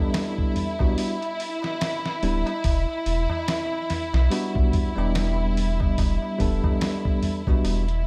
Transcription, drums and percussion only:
0.13 snare, open hi-hat, tabla na
0.38 kick, tabla na
0.56 open hi-hat, tabla ge
0.79 kick, tabla na
0.98 open hi-hat, tabla na
1.21 closed hi-hat, tabla na
1.40 open hi-hat
1.62 snare, tabla na
1.81 snare, open hi-hat, tabla na
2.05 snare, tabla na
2.23 open hi-hat
2.46 closed hi-hat, tabla na
2.64 kick, open hi-hat, tabla na
2.88 tabla na
3.06 open hi-hat
3.30 tabla na, tabla ge
3.48 snare, open hi-hat, tabla na
3.73 tabla na
3.90 snare, open hi-hat, tabla ge
4.13 snare, tabla na
4.31 open hi-hat, tabla na
4.55 kick, tabla na
4.73 kick, open hi-hat, tabla ge
4.98 tabla na
5.15 snare, open hi-hat, tabla na
5.39 tabla na
5.57 open hi-hat
5.80 kick, tabla na
5.98 kick, open hi-hat, tabla na
6.22 tabla na
6.40 kick, open hi-hat
6.64 kick, tabla na, tabla ge
6.81 snare, open hi-hat, tabla na
7.05 kick, tabla na
7.22 open hi-hat, tabla ge
7.47 kick, tabla na
7.64 open hi-hat, tabla na
7.88 closed hi-hat, tabla na

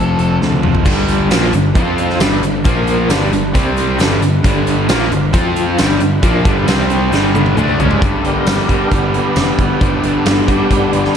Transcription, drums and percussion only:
0.19 closed hi-hat
0.42 snare
0.52 high tom
0.63 mid tom
0.75 floor tom
0.85 kick, crash, shaker
1.08 closed hi-hat, shaker
1.31 snare, closed hi-hat, tambourine, shaker
1.53 closed hi-hat, shaker
1.75 kick, closed hi-hat, shaker
1.98 closed hi-hat, shaker
2.10 snare
2.20 snare, closed hi-hat, tambourine, shaker
2.43 closed hi-hat, shaker
2.65 kick, closed hi-hat, shaker
2.87 closed hi-hat, shaker
3.10 snare, closed hi-hat, tambourine, shaker
3.32 closed hi-hat, shaker
3.55 kick, closed hi-hat, shaker
3.77 closed hi-hat, shaker
3.99 snare, closed hi-hat, tambourine, shaker
4.22 closed hi-hat, shaker
4.44 kick, closed hi-hat, shaker
4.67 closed hi-hat, shaker
4.89 snare, closed hi-hat, tambourine, shaker
5.12 closed hi-hat, shaker
5.34 kick, closed hi-hat, shaker
5.56 closed hi-hat, shaker
5.78 snare, closed hi-hat, tambourine, shaker
6.00 closed hi-hat, shaker
6.22 kick, closed hi-hat, shaker
6.45 kick, closed hi-hat, shaker
6.68 snare, closed hi-hat, tambourine, shaker
6.90 closed hi-hat, shaker
7.13 snare, shaker
7.35 high tom, shaker
7.46 high tom
7.57 mid tom, shaker
7.80 floor tom, shaker
7.91 floor tom
8.02 kick, closed hi-hat
8.24 closed hi-hat
8.47 snare, closed hi-hat, tambourine
8.69 kick, closed hi-hat
8.91 kick, closed hi-hat
9.14 closed hi-hat
9.36 snare, closed hi-hat, tambourine
9.58 kick, closed hi-hat
9.81 kick, closed hi-hat
10.03 closed hi-hat
10.26 snare, closed hi-hat, tambourine
10.48 kick, closed hi-hat
10.70 kick, closed hi-hat
10.93 closed hi-hat
11.05 snare

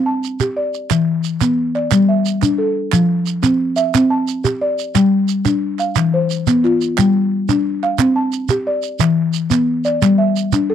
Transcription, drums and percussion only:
0.24 shekere
0.40 clap, shekere
0.74 shekere
0.91 clap, shekere
1.24 shekere
1.41 clap, shekere
1.76 clap
1.91 clap, shekere
2.26 shekere
2.42 clap, shekere
2.92 clap, shekere
3.26 shekere
3.43 clap, shekere
3.77 clap, shekere
3.94 clap, shekere
4.28 shekere
4.45 clap, shekere
4.79 shekere
4.95 clap, shekere
5.28 shekere
5.45 clap, shekere
5.79 clap, shekere
5.96 clap, shekere
6.30 shekere
6.47 clap, shekere
6.65 clap
6.81 shekere
6.98 clap, shekere
7.49 clap, shekere
7.84 clap
7.98 clap, shekere
8.33 shekere
8.49 clap, shekere
8.83 shekere
9.00 clap, shekere
9.33 shekere
9.51 clap, shekere
9.85 clap, shekere
10.02 clap, shekere
10.36 shekere
10.52 clap, shekere

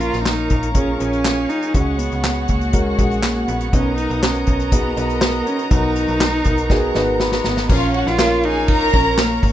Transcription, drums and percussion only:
0.01 closed hi-hat
0.13 snare, closed hi-hat
0.26 snare, clap
0.50 kick, closed hi-hat
0.63 closed hi-hat
0.75 kick, closed hi-hat
1.00 closed hi-hat
1.13 closed hi-hat
1.25 snare, clap
1.50 closed hi-hat
1.62 closed hi-hat
1.74 kick, closed hi-hat
1.99 closed hi-hat
2.12 closed hi-hat
2.24 snare, clap
2.48 kick, closed hi-hat
2.61 closed hi-hat
2.73 kick, closed hi-hat
2.99 kick, closed hi-hat
3.11 closed hi-hat
3.23 snare, clap
3.48 closed hi-hat
3.61 closed hi-hat
3.73 kick, closed hi-hat
3.98 closed hi-hat
4.11 closed hi-hat
4.23 snare, clap
4.35 closed hi-hat
4.47 kick, closed hi-hat
4.60 closed hi-hat
4.72 kick, closed hi-hat
4.97 closed hi-hat
5.10 closed hi-hat
5.21 snare, clap
5.34 closed hi-hat
5.47 closed hi-hat
5.59 closed hi-hat
5.71 kick, closed hi-hat
5.96 closed hi-hat
6.08 closed hi-hat
6.20 snare, clap
6.44 kick, closed hi-hat
6.58 closed hi-hat
6.70 kick, snare
6.95 snare
7.20 snare
7.32 snare
7.44 snare
7.57 snare
7.69 kick, crash
7.94 ride
8.07 snare
8.19 snare, clap, ride
8.43 ride
8.68 kick, ride
8.94 kick, ride
9.18 snare, clap, ride
9.43 kick, open hi-hat, ride

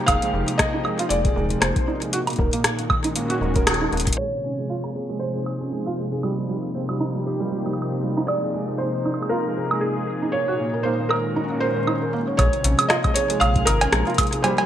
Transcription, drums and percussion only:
0.08 kick, closed hi-hat, high woodblock
0.22 closed hi-hat
0.48 closed hi-hat
0.59 kick, cross-stick, closed hi-hat
0.85 high woodblock
0.99 closed hi-hat
1.10 closed hi-hat
1.25 kick, closed hi-hat
1.50 closed hi-hat
1.62 cross-stick, closed hi-hat
1.76 kick, closed hi-hat
2.02 closed hi-hat
2.13 closed hi-hat
2.27 closed hi-hat, high woodblock
2.30 closed hi-hat
2.33 closed hi-hat
2.36 kick, closed hi-hat
2.53 closed hi-hat
2.64 cross-stick, closed hi-hat
2.79 closed hi-hat
2.90 kick, high woodblock
3.04 closed hi-hat
3.16 closed hi-hat
3.30 closed hi-hat
3.56 kick, closed hi-hat
3.67 cross-stick, closed hi-hat, high woodblock
3.74 closed hi-hat
3.93 closed hi-hat
3.97 closed hi-hat
4.00 closed hi-hat
4.07 kick, closed hi-hat
4.13 closed hi-hat
4.84 high woodblock
5.46 high woodblock
6.23 high woodblock
6.89 high woodblock
7.66 high woodblock
7.73 high woodblock
7.82 high woodblock
8.28 high woodblock
9.05 high woodblock
9.14 high woodblock
9.23 high woodblock
9.71 high woodblock
11.11 high woodblock
11.87 high woodblock
12.39 kick, closed hi-hat, high woodblock
12.53 closed hi-hat
12.64 closed hi-hat
12.79 closed hi-hat, high woodblock
12.90 cross-stick, closed hi-hat
13.04 kick, closed hi-hat, high woodblock
13.16 closed hi-hat
13.30 closed hi-hat
13.41 closed hi-hat, high woodblock
13.56 kick, closed hi-hat
13.67 closed hi-hat, high woodblock
13.81 closed hi-hat, cowbell
13.93 cross-stick, closed hi-hat
14.07 closed hi-hat
14.10 closed hi-hat
14.14 kick, closed hi-hat
14.18 closed hi-hat, high woodblock
14.27 closed hi-hat
14.33 closed hi-hat
14.44 closed hi-hat, cowbell
14.58 closed hi-hat, cowbell

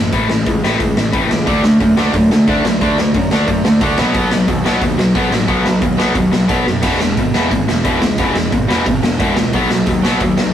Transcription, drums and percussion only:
0.13 kick, open hi-hat
0.30 snare
0.46 kick, open hi-hat
0.65 snare
0.80 kick, open hi-hat
0.97 snare
1.13 kick, open hi-hat
1.31 snare
1.47 kick, open hi-hat
1.64 snare
1.80 kick, open hi-hat
1.97 snare
2.13 kick, open hi-hat
2.31 snare
2.47 kick, open hi-hat
2.65 snare
2.81 kick, open hi-hat
2.98 snare
3.14 kick, open hi-hat
3.31 snare
3.47 kick, open hi-hat
3.65 snare
3.81 kick, open hi-hat
3.98 snare
4.14 kick, open hi-hat
4.31 snare
4.48 kick, open hi-hat
4.66 snare
4.82 kick, open hi-hat
4.99 snare
5.15 kick, open hi-hat
5.32 snare
5.48 kick, open hi-hat
5.66 snare
5.82 kick, open hi-hat
6.00 snare
6.15 kick, open hi-hat
6.33 snare
6.49 kick, open hi-hat
6.67 snare
6.83 kick, open hi-hat, crash
7.00 snare
7.17 kick, open hi-hat
7.34 snare
7.51 kick, open hi-hat
7.69 snare
7.84 kick, open hi-hat
8.02 snare
8.18 kick, open hi-hat
8.36 snare
8.52 kick, open hi-hat
8.71 snare
8.86 kick, open hi-hat
9.03 snare
9.20 kick, open hi-hat
9.37 snare
9.53 kick, open hi-hat
9.70 snare
9.86 kick, open hi-hat
10.05 snare
10.20 kick, open hi-hat
10.38 snare

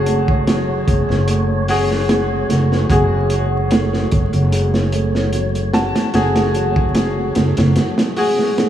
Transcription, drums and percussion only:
0.06 closed hi-hat
0.28 kick
0.47 snare, closed hi-hat
0.88 kick, closed hi-hat
1.10 snare
1.28 closed hi-hat
1.68 open hi-hat
1.91 snare
2.09 snare, closed hi-hat
2.50 snare, closed hi-hat
2.72 snare
2.90 kick, closed hi-hat
3.30 closed hi-hat
3.71 snare, closed hi-hat
3.93 snare
4.12 kick, closed hi-hat
4.33 closed hi-hat
4.53 closed hi-hat
4.74 snare
4.92 closed hi-hat
5.15 snare
5.33 closed hi-hat
5.55 closed hi-hat
5.74 snare, closed hi-hat
5.96 snare, closed hi-hat
6.14 snare, closed hi-hat
6.36 snare, closed hi-hat
6.55 closed hi-hat
6.76 kick
6.95 snare, closed hi-hat
7.35 snare, closed hi-hat
7.57 snare, closed hi-hat
7.76 snare, closed hi-hat
7.98 snare, closed hi-hat
8.17 open hi-hat
8.39 snare
8.58 snare, closed hi-hat

